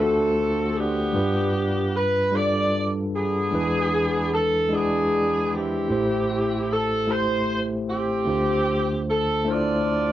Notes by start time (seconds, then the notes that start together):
Already playing: D2 D3 A3 D4 F4 F#4 C5
0.00 C4 F#4 A4
0.78 B3 D4 G4
1.13 G2 G3 D4 F4 B4
1.96 B4
2.32 G3 D4 F4 A4 D5
3.15 B3 D4 G#4
3.51 E2 E3 G#3 D4 E4 B4
4.33 A4
4.69 G#3 D4 E4 D5
4.74 B3 D4 G#4
5.54 C4 E4 G4
5.88 A1 A2 A3 E4 G4 C5
6.72 A4
7.07 A3 E4 G4 C5
7.89 C4 G4
8.25 D2 D3 A3 D4 F4 C5
9.09 A4
9.45 A3 D4 E4 C5
9.49 F4 A4 D5
9.53 F4